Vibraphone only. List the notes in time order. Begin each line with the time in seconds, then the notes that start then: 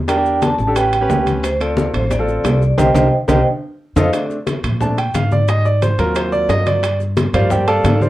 0.08 G5
0.42 A5
0.76 G5
1.43 C5
1.60 D5
1.94 C5
2.11 D5
2.44 D5
2.78 C5 D#5 G5
2.96 C5 D#5 G5
3.29 C5 D#5 G5
3.97 C5 D#5 F5